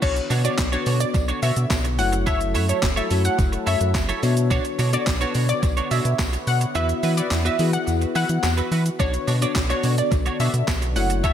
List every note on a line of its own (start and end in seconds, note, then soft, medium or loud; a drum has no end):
0.02 0.21 B1 loud
0.02 1.97 D3 medium
0.02 0.32 B3 medium
0.02 1.97 B3 medium
0.02 0.15 D4 medium
0.02 0.33 D4 medium
0.02 0.33 F#4 medium
0.02 0.16 F#4 loud
0.02 0.27 C#5 loud
0.02 1.97 C#5 medium
0.02 0.33 C#5 medium
0.02 0.15 C#5 loud
0.02 kick loud
0.02 crash loud
0.02 shaker medium
0.16 muted clean electric guitar stroke medium
0.16 closed hi-hat medium
0.16 shaker medium
0.30 0.49 B2 loud
0.30 0.41 D4 medium
0.30 0.41 F#4 medium
0.30 0.41 C#5 medium
0.30 open hi-hat medium
0.30 tambourine medium
0.30 shaker medium
0.44 0.64 B3 medium
0.44 0.65 D4 medium
0.44 0.55 D4 medium
0.44 0.65 F#4 medium
0.44 0.55 F#4 medium
0.44 0.55 C#5 medium
0.44 0.65 C#5 medium
0.44 0.57 D5 medium
0.44 closed hi-hat medium
0.44 shaker medium
0.58 0.77 B1 loud
0.58 muted clean electric guitar stroke soft
0.58 kick loud
0.58 snare loud
0.58 clap loud
0.58 tambourine medium
0.58 shaker medium
0.72 1.52 B3 medium
0.72 1.53 D4 medium
0.72 0.85 D4 medium
0.72 1.53 F#4 medium
0.72 0.86 F#4 medium
0.72 0.86 C#5 medium
0.72 0.85 C#5 medium
0.72 1.53 C#5 medium
0.72 closed hi-hat medium
0.72 shaker medium
0.86 1.05 B2 loud
0.86 0.97 D4 medium
0.86 0.97 F#4 medium
0.86 0.97 C#5 medium
0.86 open hi-hat medium
0.86 tambourine medium
0.86 shaker medium
1.00 1.13 D5 medium
1.00 closed hi-hat medium
1.00 shaker medium
1.14 1.33 B1 loud
1.14 muted clean electric guitar stroke soft
1.14 kick loud
1.14 tambourine medium
1.14 shaker medium
1.28 1.39 D4 medium
1.28 1.39 F#4 medium
1.28 1.39 C#5 medium
1.28 closed hi-hat soft
1.28 shaker medium
1.42 1.52 B2 loud
1.42 1.56 D4 medium
1.42 1.56 F#4 medium
1.42 1.55 C#5 loud
1.42 1.67 E5 medium
1.42 open hi-hat medium
1.42 tambourine medium
1.42 shaker medium
1.56 1.66 B2 loud
1.56 muted clean electric guitar stroke soft
1.56 closed hi-hat medium
1.56 shaker medium
1.70 2.00 B1 loud
1.70 muted clean electric guitar stroke soft
1.70 kick loud
1.70 snare loud
1.70 clap loud
1.70 tambourine medium
1.70 shaker medium
1.84 muted clean electric guitar stroke medium
1.84 closed hi-hat medium
1.84 shaker medium
1.99 2.56 F#1 loud
1.99 4.21 F#3 medium
1.99 2.77 A3 medium
1.99 2.77 E4 medium
1.99 4.21 E4 medium
1.99 2.77 F#4 medium
1.99 4.21 A4 medium
1.99 2.77 C#5 loud
1.99 2.11 F#5 medium
1.99 open hi-hat medium
1.99 tambourine soft
1.99 shaker medium
2.12 muted clean electric guitar stroke medium
2.12 closed hi-hat medium
2.12 shaker medium
2.26 2.40 E4 medium
2.26 2.40 A4 loud
2.26 2.39 C#5 loud
2.26 2.52 E5 loud
2.26 kick loud
2.26 tambourine soft
2.26 shaker medium
2.41 muted clean electric guitar stroke medium
2.41 closed hi-hat medium
2.41 shaker medium
2.54 2.73 F#2 loud
2.54 2.65 E4 medium
2.54 2.65 A4 medium
2.54 2.65 C#5 medium
2.54 open hi-hat medium
2.54 tambourine medium
2.54 shaker medium
2.68 2.79 E4 medium
2.68 2.79 A4 medium
2.68 2.79 C#5 medium
2.68 2.81 C#5 medium
2.68 closed hi-hat medium
2.68 shaker medium
2.82 3.01 F#1 loud
2.82 muted clean electric guitar stroke soft
2.82 kick loud
2.82 snare loud
2.82 clap loud
2.82 tambourine medium
2.82 shaker medium
2.96 3.07 A3 medium
2.96 3.07 E4 medium
2.96 3.09 E4 medium
2.96 3.07 F#4 medium
2.96 3.10 A4 medium
2.96 3.10 C#5 medium
2.96 3.07 C#5 medium
2.96 3.09 E5 medium
2.96 closed hi-hat medium
2.96 shaker medium
3.10 3.29 F#2 loud
3.10 3.91 A3 medium
3.10 3.21 E4 medium
3.10 3.91 E4 medium
3.10 3.91 F#4 medium
3.10 3.21 A4 medium
3.10 3.91 C#5 medium
3.10 3.22 C#5 medium
3.10 open hi-hat medium
3.10 tambourine medium
3.10 shaker medium
3.25 3.37 F#5 medium
3.25 muted clean electric guitar stroke soft
3.25 closed hi-hat medium
3.25 shaker medium
3.39 3.57 F#1 loud
3.39 kick loud
3.39 tambourine medium
3.39 shaker medium
3.53 muted clean electric guitar stroke soft
3.53 closed hi-hat soft
3.53 shaker soft
3.67 3.76 F#2 loud
3.67 3.80 E4 medium
3.67 3.80 A4 medium
3.67 3.79 C#5 loud
3.67 3.92 E5 medium
3.67 open hi-hat medium
3.67 tambourine soft
3.67 shaker medium
3.81 3.96 F#2 loud
3.81 muted clean electric guitar stroke soft
3.81 closed hi-hat medium
3.81 shaker medium
3.95 4.13 F#1 loud
3.95 muted clean electric guitar stroke soft
3.95 kick loud
3.95 snare loud
3.95 clap loud
3.95 tambourine medium
3.95 shaker medium
4.09 4.22 E4 medium
4.09 4.22 A4 medium
4.09 4.22 C#5 loud
4.09 closed hi-hat medium
4.09 shaker medium
4.23 4.59 B2 loud
4.23 6.73 D3 medium
4.23 4.79 B3 loud
4.23 10.92 B3 medium
4.23 4.33 D4 medium
4.23 4.79 D4 loud
4.23 4.79 F#4 medium
4.23 4.33 F#4 medium
4.23 6.73 C#5 medium
4.23 4.79 C#5 loud
4.23 4.34 C#5 medium
4.23 open hi-hat medium
4.23 tambourine soft
4.23 shaker medium
4.37 muted clean electric guitar stroke medium
4.37 closed hi-hat medium
4.37 shaker medium
4.50 4.64 D4 loud
4.50 4.64 F#4 loud
4.50 4.76 C#5 loud
4.50 4.64 C#5 loud
4.50 kick loud
4.50 tambourine soft
4.50 shaker medium
4.65 muted clean electric guitar stroke soft
4.65 closed hi-hat medium
4.65 shaker medium
4.79 4.97 B2 loud
4.79 4.89 D4 medium
4.79 4.90 F#4 medium
4.79 4.90 C#5 medium
4.79 open hi-hat medium
4.79 tambourine medium
4.79 shaker medium
4.93 5.13 B3 medium
4.93 5.13 D4 medium
4.93 5.04 D4 medium
4.93 5.13 F#4 medium
4.93 5.04 F#4 medium
4.93 5.03 C#5 medium
4.93 5.13 C#5 medium
4.93 5.06 D5 medium
4.93 closed hi-hat medium
4.93 shaker medium
5.06 5.25 B1 loud
5.06 muted clean electric guitar stroke medium
5.06 kick loud
5.06 snare loud
5.06 clap loud
5.06 tambourine medium
5.06 shaker medium
5.21 6.01 B3 medium
5.21 6.01 D4 medium
5.21 5.34 D4 medium
5.21 6.01 F#4 medium
5.21 5.34 F#4 medium
5.21 6.01 B4 medium
5.21 5.34 C#5 medium
5.21 closed hi-hat medium
5.21 shaker medium
5.35 5.53 B2 loud
5.35 5.45 D4 medium
5.35 5.46 F#4 medium
5.35 5.46 C#5 medium
5.35 open hi-hat medium
5.35 tambourine medium
5.35 shaker medium
5.49 5.61 D5 medium
5.49 closed hi-hat medium
5.49 shaker medium
5.63 5.81 B1 medium
5.63 muted clean electric guitar stroke soft
5.63 kick loud
5.63 tambourine medium
5.63 shaker medium
5.77 5.88 D4 medium
5.77 5.88 F#4 medium
5.77 5.87 C#5 medium
5.77 closed hi-hat soft
5.77 shaker soft
5.91 6.00 B2 loud
5.91 6.04 D4 medium
5.91 6.05 F#4 medium
5.91 6.04 C#5 medium
5.91 6.16 E5 medium
5.91 open hi-hat medium
5.91 tambourine medium
5.91 shaker medium
6.05 6.14 B2 loud
6.05 muted clean electric guitar stroke soft
6.05 closed hi-hat medium
6.05 shaker medium
6.19 6.37 B1 loud
6.19 muted clean electric guitar stroke soft
6.19 kick loud
6.19 snare loud
6.19 clap loud
6.19 tambourine medium
6.19 shaker medium
6.33 muted clean electric guitar stroke medium
6.33 closed hi-hat medium
6.33 shaker medium
6.47 6.66 B2 loud
6.47 6.60 F#5 medium
6.47 open hi-hat medium
6.47 shaker medium
6.61 muted clean electric guitar stroke medium
6.61 closed hi-hat medium
6.61 shaker medium
6.75 6.94 E2 loud
6.75 8.98 E3 medium
6.75 7.25 B3 medium
6.75 6.88 E4 medium
6.75 7.25 E4 medium
6.75 7.25 F#4 medium
6.75 8.97 F#4 medium
6.75 6.89 F#4 loud
6.75 6.88 B4 loud
6.75 7.00 E5 loud
6.75 7.25 E5 medium
6.75 tambourine soft
6.75 shaker medium
6.89 muted clean electric guitar stroke soft
6.89 closed hi-hat medium
6.89 shaker medium
7.03 7.22 E3 loud
7.03 7.14 E4 medium
7.03 7.14 F#4 medium
7.03 7.14 B4 medium
7.03 open hi-hat medium
7.03 tambourine medium
7.03 shaker medium
7.17 7.28 E4 medium
7.17 7.28 F#4 medium
7.17 7.28 B4 medium
7.17 7.30 D5 medium
7.17 closed hi-hat medium
7.17 shaker loud
7.31 7.50 E2 loud
7.31 muted clean electric guitar stroke medium
7.31 snare loud
7.31 clap loud
7.31 tambourine medium
7.31 shaker medium
7.45 7.55 B3 medium
7.45 7.55 E4 medium
7.45 7.58 E4 medium
7.45 7.55 F#4 medium
7.45 7.58 F#4 medium
7.45 7.58 B4 medium
7.45 7.56 E5 medium
7.45 7.58 E5 medium
7.45 closed hi-hat medium
7.45 shaker medium
7.59 7.78 E3 loud
7.59 8.39 B3 medium
7.59 7.70 E4 medium
7.59 8.39 E4 medium
7.59 8.40 F#4 medium
7.59 7.70 F#4 medium
7.59 8.40 G#4 medium
7.59 7.70 B4 medium
7.59 open hi-hat medium
7.59 tambourine medium
7.59 shaker medium
7.73 7.86 F#5 medium
7.73 closed hi-hat medium
7.73 shaker medium
7.87 8.06 E2 loud
7.87 tambourine medium
7.87 shaker medium
8.01 muted clean electric guitar stroke soft
8.01 closed hi-hat soft
8.01 shaker soft
8.15 8.25 E3 loud
8.15 8.29 E4 medium
8.15 8.29 F#4 medium
8.15 8.28 B4 loud
8.15 8.55 F#5 medium
8.15 open hi-hat medium
8.15 tambourine medium
8.15 shaker medium
8.29 8.39 E3 loud
8.29 muted clean electric guitar stroke soft
8.29 closed hi-hat medium
8.29 shaker medium
8.43 8.62 E2 loud
8.43 muted clean electric guitar stroke soft
8.43 snare loud
8.43 clap loud
8.43 tambourine medium
8.43 shaker medium
8.57 8.70 E4 medium
8.57 8.71 F#4 medium
8.57 8.71 B4 medium
8.57 closed hi-hat medium
8.57 shaker medium
8.71 8.90 E3 loud
8.71 8.82 E4 medium
8.71 8.82 F#4 medium
8.71 8.82 B4 medium
8.71 open hi-hat medium
8.71 tambourine soft
8.71 shaker medium
8.86 closed hi-hat medium
8.86 shaker medium
8.99 9.18 B1 loud
8.99 10.94 D3 medium
8.99 9.30 B3 medium
8.99 9.13 D4 medium
8.99 9.30 D4 medium
8.99 10.94 D4 medium
8.99 9.30 F#4 medium
8.99 9.13 F#4 medium
8.99 9.24 C#5 loud
8.99 9.30 C#5 medium
8.99 9.12 C#5 medium
8.99 kick loud
8.99 tambourine soft
8.99 shaker medium
9.14 muted clean electric guitar stroke soft
9.14 closed hi-hat medium
9.14 shaker medium
9.27 9.46 B2 loud
9.27 9.38 D4 medium
9.27 9.38 F#4 medium
9.27 9.38 C#5 medium
9.27 open hi-hat medium
9.27 tambourine medium
9.27 shaker medium
9.41 9.62 B3 medium
9.41 9.62 D4 medium
9.41 9.53 D4 medium
9.41 9.62 F#4 medium
9.41 9.52 F#4 medium
9.41 9.52 C#5 medium
9.41 9.62 C#5 medium
9.41 9.54 D5 medium
9.41 closed hi-hat medium
9.41 shaker medium
9.55 9.74 B1 loud
9.55 muted clean electric guitar stroke soft
9.55 kick loud
9.55 snare loud
9.55 clap loud
9.55 tambourine medium
9.55 shaker medium
9.70 10.50 B3 medium
9.70 10.50 D4 medium
9.70 9.83 D4 medium
9.70 10.50 F#4 medium
9.70 9.83 F#4 medium
9.70 9.83 C#5 medium
9.70 9.82 C#5 medium
9.70 10.50 D5 medium
9.70 closed hi-hat medium
9.70 shaker medium
9.84 10.02 B2 loud
9.84 9.94 D4 medium
9.84 9.94 F#4 medium
9.84 9.95 C#5 medium
9.84 open hi-hat medium
9.84 tambourine medium
9.84 shaker medium
9.98 10.10 D5 medium
9.98 closed hi-hat medium
9.98 shaker medium
10.11 10.30 B1 loud
10.11 muted clean electric guitar stroke soft
10.11 kick loud
10.11 tambourine medium
10.11 shaker medium
10.26 10.37 D4 medium
10.26 10.36 F#4 medium
10.26 10.36 C#5 medium
10.26 closed hi-hat soft
10.26 shaker soft
10.40 10.49 B2 loud
10.40 10.53 D4 medium
10.40 10.53 F#4 medium
10.40 10.53 C#5 medium
10.40 10.65 E5 medium
10.40 open hi-hat medium
10.40 tambourine soft
10.40 shaker medium
10.54 10.63 B2 loud
10.54 muted clean electric guitar stroke medium
10.54 closed hi-hat medium
10.54 shaker medium
10.68 10.97 B1 loud
10.68 muted clean electric guitar stroke soft
10.68 kick loud
10.68 snare loud
10.68 clap loud
10.68 tambourine medium
10.68 shaker medium
10.82 muted clean electric guitar stroke soft
10.82 closed hi-hat medium
10.82 shaker medium
10.96 11.33 F#1 loud
10.96 11.33 F#3 medium
10.96 11.33 A3 medium
10.96 11.33 E4 medium
10.96 11.33 F#4 medium
10.96 11.33 A4 medium
10.96 11.33 C#5 loud
10.96 11.08 F#5 medium
10.96 open hi-hat medium
10.96 tambourine soft
10.96 shaker medium
11.10 muted clean electric guitar stroke soft
11.10 closed hi-hat medium
11.10 shaker medium
11.24 11.33 E4 loud
11.24 11.33 A4 medium
11.24 11.33 C#5 loud
11.24 11.33 E5 loud
11.24 kick loud
11.24 tambourine soft
11.24 shaker medium